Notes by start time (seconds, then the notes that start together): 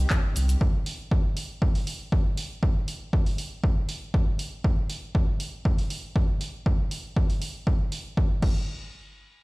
Already playing: D#3 C4 G4
0.10 kick, clap, cabasa
0.36 C2, open hi-hat, cabasa
0.49 closed hi-hat, cabasa
0.61 kick
0.86 open hi-hat
1.11 kick
1.37 open hi-hat
1.62 kick
1.75 open hi-hat
1.87 open hi-hat
2.12 kick
2.37 open hi-hat
2.63 kick
2.88 open hi-hat
3.13 kick
3.26 open hi-hat
3.38 open hi-hat
3.64 kick
3.89 open hi-hat
4.14 kick
4.39 open hi-hat
4.64 kick
4.90 open hi-hat
5.15 kick
5.40 open hi-hat
5.65 kick
5.78 open hi-hat
5.90 open hi-hat
6.16 kick
6.41 open hi-hat
6.66 kick
6.91 open hi-hat
7.16 kick
7.30 open hi-hat
7.42 open hi-hat
7.67 kick
7.92 open hi-hat
8.17 kick
8.42 kick, crash